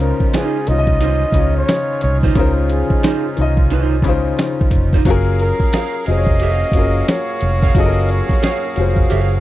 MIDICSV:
0, 0, Header, 1, 9, 480
1, 0, Start_track
1, 0, Key_signature, -5, "major"
1, 0, Tempo, 674157
1, 1679, Time_signature, 4, 2, 24, 8
1, 6694, End_track
2, 0, Start_track
2, 0, Title_t, "Flugelhorn"
2, 0, Program_c, 0, 56
2, 6, Note_on_c, 0, 70, 83
2, 213, Note_off_c, 0, 70, 0
2, 213, Note_on_c, 0, 70, 67
2, 246, Note_on_c, 0, 68, 93
2, 256, Note_off_c, 0, 70, 0
2, 487, Note_on_c, 0, 75, 110
2, 498, Note_off_c, 0, 68, 0
2, 1110, Note_off_c, 0, 75, 0
2, 1114, Note_on_c, 0, 73, 100
2, 1419, Note_off_c, 0, 73, 0
2, 1444, Note_on_c, 0, 73, 86
2, 1550, Note_off_c, 0, 73, 0
2, 1688, Note_on_c, 0, 70, 88
2, 1794, Note_off_c, 0, 70, 0
2, 1927, Note_on_c, 0, 68, 80
2, 2374, Note_off_c, 0, 68, 0
2, 3851, Note_on_c, 0, 70, 97
2, 4297, Note_off_c, 0, 70, 0
2, 4326, Note_on_c, 0, 75, 112
2, 5045, Note_on_c, 0, 73, 91
2, 5056, Note_off_c, 0, 75, 0
2, 5522, Note_off_c, 0, 73, 0
2, 5529, Note_on_c, 0, 75, 98
2, 5770, Note_on_c, 0, 73, 86
2, 5781, Note_off_c, 0, 75, 0
2, 6244, Note_off_c, 0, 73, 0
2, 6694, End_track
3, 0, Start_track
3, 0, Title_t, "Clean electric guitar"
3, 0, Program_c, 1, 27
3, 240, Note_on_c, 1, 63, 70
3, 248, Note_on_c, 1, 65, 76
3, 252, Note_on_c, 1, 72, 80
3, 406, Note_off_c, 1, 63, 0
3, 410, Note_off_c, 1, 65, 0
3, 412, Note_off_c, 1, 72, 0
3, 721, Note_on_c, 1, 63, 83
3, 729, Note_on_c, 1, 65, 92
3, 735, Note_on_c, 1, 72, 99
3, 865, Note_off_c, 1, 63, 0
3, 869, Note_off_c, 1, 65, 0
3, 872, Note_off_c, 1, 72, 0
3, 1594, Note_on_c, 1, 72, 65
3, 1602, Note_on_c, 1, 65, 59
3, 1605, Note_on_c, 1, 63, 56
3, 1660, Note_off_c, 1, 72, 0
3, 1664, Note_off_c, 1, 65, 0
3, 1665, Note_off_c, 1, 63, 0
3, 2166, Note_on_c, 1, 63, 77
3, 2173, Note_on_c, 1, 65, 83
3, 2178, Note_on_c, 1, 72, 85
3, 2308, Note_off_c, 1, 63, 0
3, 2311, Note_off_c, 1, 65, 0
3, 2314, Note_off_c, 1, 72, 0
3, 2645, Note_on_c, 1, 63, 78
3, 2651, Note_on_c, 1, 65, 82
3, 2657, Note_on_c, 1, 72, 90
3, 2809, Note_off_c, 1, 63, 0
3, 2811, Note_off_c, 1, 65, 0
3, 2814, Note_off_c, 1, 72, 0
3, 3518, Note_on_c, 1, 72, 55
3, 3524, Note_on_c, 1, 65, 54
3, 3529, Note_on_c, 1, 63, 51
3, 3582, Note_off_c, 1, 72, 0
3, 3584, Note_off_c, 1, 65, 0
3, 3587, Note_off_c, 1, 63, 0
3, 4084, Note_on_c, 1, 68, 75
3, 4093, Note_on_c, 1, 70, 85
3, 4096, Note_on_c, 1, 77, 97
3, 4227, Note_off_c, 1, 68, 0
3, 4231, Note_off_c, 1, 70, 0
3, 4233, Note_off_c, 1, 77, 0
3, 4567, Note_on_c, 1, 68, 83
3, 4575, Note_on_c, 1, 70, 88
3, 4579, Note_on_c, 1, 77, 98
3, 4730, Note_off_c, 1, 68, 0
3, 4733, Note_off_c, 1, 70, 0
3, 4735, Note_off_c, 1, 77, 0
3, 5435, Note_on_c, 1, 77, 61
3, 5443, Note_on_c, 1, 70, 51
3, 5447, Note_on_c, 1, 68, 49
3, 5500, Note_off_c, 1, 77, 0
3, 5504, Note_off_c, 1, 70, 0
3, 5506, Note_off_c, 1, 68, 0
3, 6001, Note_on_c, 1, 68, 71
3, 6007, Note_on_c, 1, 70, 85
3, 6013, Note_on_c, 1, 77, 83
3, 6145, Note_off_c, 1, 68, 0
3, 6148, Note_off_c, 1, 70, 0
3, 6151, Note_off_c, 1, 77, 0
3, 6480, Note_on_c, 1, 68, 78
3, 6486, Note_on_c, 1, 70, 77
3, 6492, Note_on_c, 1, 77, 82
3, 6646, Note_off_c, 1, 68, 0
3, 6649, Note_off_c, 1, 70, 0
3, 6652, Note_off_c, 1, 77, 0
3, 6694, End_track
4, 0, Start_track
4, 0, Title_t, "Grand piano"
4, 0, Program_c, 2, 0
4, 0, Control_c, 2, 64, 127
4, 0, Note_on_c, 2, 49, 110
4, 0, Note_on_c, 2, 61, 98
4, 0, Note_on_c, 2, 63, 102
4, 0, Note_on_c, 2, 65, 102
4, 0, Note_on_c, 2, 72, 122
4, 348, Note_off_c, 2, 49, 0
4, 353, Note_off_c, 2, 61, 0
4, 356, Note_off_c, 2, 63, 0
4, 361, Note_off_c, 2, 65, 0
4, 364, Note_off_c, 2, 72, 0
4, 479, Note_on_c, 2, 51, 69
4, 486, Note_on_c, 2, 61, 66
4, 495, Note_on_c, 2, 63, 65
4, 502, Note_on_c, 2, 65, 65
4, 511, Note_on_c, 2, 73, 60
4, 553, Note_off_c, 2, 73, 0
4, 558, Note_on_c, 2, 75, 79
4, 883, Note_off_c, 2, 51, 0
4, 886, Note_off_c, 2, 61, 0
4, 891, Note_off_c, 2, 63, 0
4, 894, Note_off_c, 2, 65, 0
4, 922, Note_off_c, 2, 75, 0
4, 953, Note_on_c, 2, 49, 76
4, 963, Note_on_c, 2, 61, 64
4, 971, Note_on_c, 2, 63, 69
4, 979, Note_on_c, 2, 65, 69
4, 987, Note_on_c, 2, 73, 82
4, 1546, Note_off_c, 2, 49, 0
4, 1551, Note_off_c, 2, 61, 0
4, 1555, Note_off_c, 2, 63, 0
4, 1559, Note_off_c, 2, 65, 0
4, 1563, Note_off_c, 2, 73, 0
4, 1676, Note_on_c, 2, 49, 94
4, 1683, Note_on_c, 2, 61, 84
4, 1692, Note_on_c, 2, 63, 84
4, 1701, Note_on_c, 2, 65, 89
4, 1709, Note_on_c, 2, 72, 102
4, 2267, Note_off_c, 2, 49, 0
4, 2271, Note_off_c, 2, 61, 0
4, 2275, Note_off_c, 2, 63, 0
4, 2280, Note_off_c, 2, 65, 0
4, 2284, Note_off_c, 2, 72, 0
4, 2398, Note_on_c, 2, 51, 71
4, 2407, Note_on_c, 2, 61, 63
4, 2414, Note_on_c, 2, 63, 70
4, 2422, Note_on_c, 2, 65, 64
4, 2431, Note_on_c, 2, 75, 80
4, 2802, Note_off_c, 2, 51, 0
4, 2807, Note_off_c, 2, 61, 0
4, 2810, Note_off_c, 2, 63, 0
4, 2814, Note_off_c, 2, 65, 0
4, 2819, Note_off_c, 2, 75, 0
4, 2876, Note_on_c, 2, 49, 92
4, 2886, Note_on_c, 2, 61, 81
4, 2893, Note_on_c, 2, 63, 84
4, 2902, Note_on_c, 2, 65, 86
4, 2910, Note_on_c, 2, 72, 98
4, 3467, Note_off_c, 2, 49, 0
4, 3472, Note_off_c, 2, 61, 0
4, 3476, Note_off_c, 2, 63, 0
4, 3480, Note_off_c, 2, 65, 0
4, 3484, Note_off_c, 2, 72, 0
4, 3599, Note_on_c, 2, 54, 117
4, 3607, Note_on_c, 2, 61, 108
4, 3609, Control_c, 2, 64, 0
4, 3614, Note_on_c, 2, 65, 105
4, 3623, Note_on_c, 2, 68, 99
4, 3632, Note_on_c, 2, 70, 127
4, 3751, Control_c, 2, 64, 127
4, 4189, Note_off_c, 2, 54, 0
4, 4193, Note_off_c, 2, 61, 0
4, 4196, Note_off_c, 2, 65, 0
4, 4201, Note_off_c, 2, 68, 0
4, 4205, Note_off_c, 2, 70, 0
4, 4315, Note_on_c, 2, 54, 73
4, 4325, Note_on_c, 2, 61, 67
4, 4333, Note_on_c, 2, 65, 66
4, 4341, Note_on_c, 2, 68, 70
4, 4348, Note_on_c, 2, 72, 65
4, 4391, Note_off_c, 2, 72, 0
4, 4395, Note_on_c, 2, 73, 81
4, 4721, Note_off_c, 2, 54, 0
4, 4726, Note_off_c, 2, 61, 0
4, 4730, Note_off_c, 2, 65, 0
4, 4734, Note_off_c, 2, 68, 0
4, 4761, Note_off_c, 2, 73, 0
4, 4793, Note_on_c, 2, 54, 71
4, 4803, Note_on_c, 2, 61, 73
4, 4810, Note_on_c, 2, 65, 72
4, 4820, Note_on_c, 2, 68, 69
4, 4828, Note_on_c, 2, 70, 82
4, 5386, Note_off_c, 2, 54, 0
4, 5391, Note_off_c, 2, 61, 0
4, 5394, Note_off_c, 2, 65, 0
4, 5399, Note_off_c, 2, 68, 0
4, 5403, Note_off_c, 2, 70, 0
4, 5513, Note_on_c, 2, 54, 91
4, 5523, Note_on_c, 2, 61, 88
4, 5530, Note_on_c, 2, 65, 91
4, 5539, Note_on_c, 2, 68, 86
4, 5549, Note_on_c, 2, 69, 83
4, 5591, Note_off_c, 2, 69, 0
4, 5594, Note_on_c, 2, 70, 104
4, 6106, Note_off_c, 2, 54, 0
4, 6111, Note_off_c, 2, 61, 0
4, 6114, Note_off_c, 2, 65, 0
4, 6119, Note_off_c, 2, 68, 0
4, 6146, Note_off_c, 2, 70, 0
4, 6234, Note_on_c, 2, 54, 74
4, 6244, Note_on_c, 2, 61, 67
4, 6252, Note_on_c, 2, 65, 68
4, 6260, Note_on_c, 2, 68, 65
4, 6269, Note_on_c, 2, 72, 79
4, 6640, Note_off_c, 2, 54, 0
4, 6645, Note_off_c, 2, 61, 0
4, 6649, Note_off_c, 2, 65, 0
4, 6653, Note_off_c, 2, 68, 0
4, 6658, Note_off_c, 2, 72, 0
4, 6694, End_track
5, 0, Start_track
5, 0, Title_t, "Accordion"
5, 0, Program_c, 3, 21
5, 0, Note_on_c, 3, 56, 63
5, 0, Note_on_c, 3, 61, 72
5, 0, Note_on_c, 3, 63, 68
5, 0, Note_on_c, 3, 65, 81
5, 3570, Note_off_c, 3, 56, 0
5, 3571, Note_off_c, 3, 61, 0
5, 3571, Note_off_c, 3, 63, 0
5, 3571, Note_off_c, 3, 65, 0
5, 3602, Note_on_c, 3, 70, 84
5, 3603, Note_on_c, 3, 54, 74
5, 3603, Note_on_c, 3, 77, 69
5, 3604, Note_on_c, 3, 68, 67
5, 6694, Note_off_c, 3, 54, 0
5, 6694, Note_off_c, 3, 68, 0
5, 6694, Note_off_c, 3, 70, 0
5, 6694, Note_off_c, 3, 77, 0
5, 6694, End_track
6, 0, Start_track
6, 0, Title_t, "Horn section"
6, 0, Program_c, 4, 61
6, 717, Note_on_c, 4, 63, 71
6, 717, Note_on_c, 4, 65, 70
6, 717, Note_on_c, 4, 68, 78
6, 3329, Note_off_c, 4, 65, 0
6, 3330, Note_off_c, 4, 63, 0
6, 3330, Note_off_c, 4, 68, 0
6, 4557, Note_on_c, 4, 66, 83
6, 4558, Note_on_c, 4, 58, 74
6, 4559, Note_on_c, 4, 61, 76
6, 6694, Note_off_c, 4, 58, 0
6, 6694, Note_off_c, 4, 61, 0
6, 6694, Note_off_c, 4, 66, 0
6, 6694, End_track
7, 0, Start_track
7, 0, Title_t, "Fingered electric bass"
7, 0, Program_c, 5, 33
7, 0, Note_on_c, 5, 37, 93
7, 82, Note_off_c, 5, 37, 0
7, 487, Note_on_c, 5, 36, 85
7, 879, Note_off_c, 5, 36, 0
7, 948, Note_on_c, 5, 37, 84
7, 1150, Note_off_c, 5, 37, 0
7, 1451, Note_on_c, 5, 36, 84
7, 1644, Note_off_c, 5, 36, 0
7, 1682, Note_on_c, 5, 37, 98
7, 2002, Note_off_c, 5, 37, 0
7, 2409, Note_on_c, 5, 36, 87
7, 2869, Note_off_c, 5, 36, 0
7, 2869, Note_on_c, 5, 37, 84
7, 3071, Note_off_c, 5, 37, 0
7, 3357, Note_on_c, 5, 29, 88
7, 3555, Note_off_c, 5, 29, 0
7, 3602, Note_on_c, 5, 30, 104
7, 3922, Note_off_c, 5, 30, 0
7, 4328, Note_on_c, 5, 29, 85
7, 4719, Note_off_c, 5, 29, 0
7, 4788, Note_on_c, 5, 30, 99
7, 4990, Note_off_c, 5, 30, 0
7, 5285, Note_on_c, 5, 29, 89
7, 5480, Note_off_c, 5, 29, 0
7, 5521, Note_on_c, 5, 30, 100
7, 5841, Note_off_c, 5, 30, 0
7, 6247, Note_on_c, 5, 29, 82
7, 6441, Note_off_c, 5, 29, 0
7, 6490, Note_on_c, 5, 30, 96
7, 6683, Note_off_c, 5, 30, 0
7, 6694, End_track
8, 0, Start_track
8, 0, Title_t, "Muted fingered electric bass strokes"
8, 149, Note_on_c, 9, 29, 43
8, 220, Note_off_c, 9, 29, 0
8, 2070, Note_on_c, 9, 29, 44
8, 2141, Note_off_c, 9, 29, 0
8, 3990, Note_on_c, 9, 29, 46
8, 4061, Note_off_c, 9, 29, 0
8, 5910, Note_on_c, 9, 29, 45
8, 5981, Note_off_c, 9, 29, 0
8, 6694, End_track
9, 0, Start_track
9, 0, Title_t, "Drums"
9, 0, Note_on_c, 9, 42, 67
9, 68, Note_off_c, 9, 42, 0
9, 144, Note_on_c, 9, 36, 89
9, 215, Note_off_c, 9, 36, 0
9, 238, Note_on_c, 9, 42, 86
9, 243, Note_on_c, 9, 26, 81
9, 245, Note_on_c, 9, 38, 107
9, 309, Note_off_c, 9, 42, 0
9, 314, Note_off_c, 9, 26, 0
9, 316, Note_off_c, 9, 38, 0
9, 475, Note_on_c, 9, 42, 67
9, 546, Note_off_c, 9, 42, 0
9, 620, Note_on_c, 9, 36, 83
9, 692, Note_off_c, 9, 36, 0
9, 716, Note_on_c, 9, 42, 83
9, 788, Note_off_c, 9, 42, 0
9, 942, Note_on_c, 9, 36, 91
9, 952, Note_on_c, 9, 42, 62
9, 1013, Note_off_c, 9, 36, 0
9, 1024, Note_off_c, 9, 42, 0
9, 1199, Note_on_c, 9, 42, 65
9, 1200, Note_on_c, 9, 26, 85
9, 1202, Note_on_c, 9, 38, 111
9, 1270, Note_off_c, 9, 42, 0
9, 1271, Note_off_c, 9, 26, 0
9, 1273, Note_off_c, 9, 38, 0
9, 1431, Note_on_c, 9, 42, 74
9, 1502, Note_off_c, 9, 42, 0
9, 1589, Note_on_c, 9, 36, 90
9, 1598, Note_on_c, 9, 38, 34
9, 1660, Note_off_c, 9, 36, 0
9, 1669, Note_off_c, 9, 38, 0
9, 1676, Note_on_c, 9, 42, 77
9, 1677, Note_on_c, 9, 36, 124
9, 1747, Note_off_c, 9, 42, 0
9, 1748, Note_off_c, 9, 36, 0
9, 1918, Note_on_c, 9, 42, 69
9, 1989, Note_off_c, 9, 42, 0
9, 2066, Note_on_c, 9, 36, 85
9, 2137, Note_off_c, 9, 36, 0
9, 2160, Note_on_c, 9, 42, 80
9, 2165, Note_on_c, 9, 26, 88
9, 2167, Note_on_c, 9, 38, 107
9, 2231, Note_off_c, 9, 42, 0
9, 2236, Note_off_c, 9, 26, 0
9, 2238, Note_off_c, 9, 38, 0
9, 2398, Note_on_c, 9, 42, 70
9, 2469, Note_off_c, 9, 42, 0
9, 2542, Note_on_c, 9, 36, 85
9, 2614, Note_off_c, 9, 36, 0
9, 2637, Note_on_c, 9, 42, 85
9, 2708, Note_off_c, 9, 42, 0
9, 2864, Note_on_c, 9, 36, 87
9, 2877, Note_on_c, 9, 42, 64
9, 2935, Note_off_c, 9, 36, 0
9, 2949, Note_off_c, 9, 42, 0
9, 3122, Note_on_c, 9, 42, 70
9, 3124, Note_on_c, 9, 26, 86
9, 3126, Note_on_c, 9, 38, 104
9, 3193, Note_off_c, 9, 42, 0
9, 3195, Note_off_c, 9, 26, 0
9, 3197, Note_off_c, 9, 38, 0
9, 3282, Note_on_c, 9, 36, 97
9, 3352, Note_off_c, 9, 36, 0
9, 3352, Note_on_c, 9, 36, 85
9, 3355, Note_on_c, 9, 42, 72
9, 3423, Note_off_c, 9, 36, 0
9, 3426, Note_off_c, 9, 42, 0
9, 3509, Note_on_c, 9, 36, 89
9, 3520, Note_on_c, 9, 38, 34
9, 3580, Note_off_c, 9, 36, 0
9, 3591, Note_off_c, 9, 38, 0
9, 3597, Note_on_c, 9, 36, 120
9, 3597, Note_on_c, 9, 42, 78
9, 3668, Note_off_c, 9, 36, 0
9, 3668, Note_off_c, 9, 42, 0
9, 3840, Note_on_c, 9, 42, 71
9, 3911, Note_off_c, 9, 42, 0
9, 3985, Note_on_c, 9, 36, 87
9, 4056, Note_off_c, 9, 36, 0
9, 4078, Note_on_c, 9, 42, 84
9, 4083, Note_on_c, 9, 26, 87
9, 4085, Note_on_c, 9, 38, 100
9, 4149, Note_off_c, 9, 42, 0
9, 4154, Note_off_c, 9, 26, 0
9, 4156, Note_off_c, 9, 38, 0
9, 4316, Note_on_c, 9, 42, 66
9, 4387, Note_off_c, 9, 42, 0
9, 4461, Note_on_c, 9, 36, 88
9, 4532, Note_off_c, 9, 36, 0
9, 4555, Note_on_c, 9, 42, 90
9, 4626, Note_off_c, 9, 42, 0
9, 4783, Note_on_c, 9, 36, 89
9, 4794, Note_on_c, 9, 42, 63
9, 4854, Note_off_c, 9, 36, 0
9, 4865, Note_off_c, 9, 42, 0
9, 5042, Note_on_c, 9, 42, 65
9, 5043, Note_on_c, 9, 26, 82
9, 5045, Note_on_c, 9, 38, 111
9, 5113, Note_off_c, 9, 42, 0
9, 5115, Note_off_c, 9, 26, 0
9, 5117, Note_off_c, 9, 38, 0
9, 5272, Note_on_c, 9, 42, 75
9, 5344, Note_off_c, 9, 42, 0
9, 5429, Note_on_c, 9, 36, 91
9, 5440, Note_on_c, 9, 38, 35
9, 5500, Note_off_c, 9, 36, 0
9, 5511, Note_off_c, 9, 38, 0
9, 5517, Note_on_c, 9, 36, 124
9, 5517, Note_on_c, 9, 42, 81
9, 5588, Note_off_c, 9, 36, 0
9, 5589, Note_off_c, 9, 42, 0
9, 5758, Note_on_c, 9, 42, 71
9, 5829, Note_off_c, 9, 42, 0
9, 5905, Note_on_c, 9, 36, 91
9, 5917, Note_on_c, 9, 38, 34
9, 5976, Note_off_c, 9, 36, 0
9, 5988, Note_off_c, 9, 38, 0
9, 6000, Note_on_c, 9, 42, 86
9, 6004, Note_on_c, 9, 26, 81
9, 6007, Note_on_c, 9, 38, 106
9, 6071, Note_off_c, 9, 42, 0
9, 6076, Note_off_c, 9, 26, 0
9, 6078, Note_off_c, 9, 38, 0
9, 6237, Note_on_c, 9, 42, 65
9, 6309, Note_off_c, 9, 42, 0
9, 6382, Note_on_c, 9, 36, 89
9, 6453, Note_off_c, 9, 36, 0
9, 6478, Note_on_c, 9, 42, 84
9, 6549, Note_off_c, 9, 42, 0
9, 6694, End_track
0, 0, End_of_file